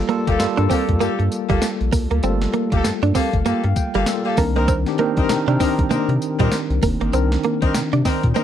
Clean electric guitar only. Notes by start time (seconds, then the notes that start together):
0.09 A#3
0.27 muted clean electric guitar stroke
0.39 muted clean electric guitar stroke
0.57 D4
0.70 C4
1.00 A#3
1.19 muted clean electric guitar stroke
1.50 G3
1.62 muted clean electric guitar stroke
1.92 A#3
2.11 A#3
2.24 C4
2.54 A#3
2.72 muted clean electric guitar stroke
2.84 muted clean electric guitar stroke
3.03 D4
3.15 C4
3.46 A#3
3.64 muted clean electric guitar stroke
3.95 G3
4.07 muted clean electric guitar stroke
4.38 A#3
4.56 A#3
4.68 C4
4.99 A#3
5.18 muted clean electric guitar stroke
5.29 muted clean electric guitar stroke
5.48 D4
5.60 C4
5.91 A#3
6.10 muted clean electric guitar stroke
6.40 G3
6.52 muted clean electric guitar stroke
6.83 A#3
7.01 A#3
7.14 C4
7.45 A#3
7.62 muted clean electric guitar stroke
7.75 muted clean electric guitar stroke
7.93 D4
8.05 C4
8.36 A#3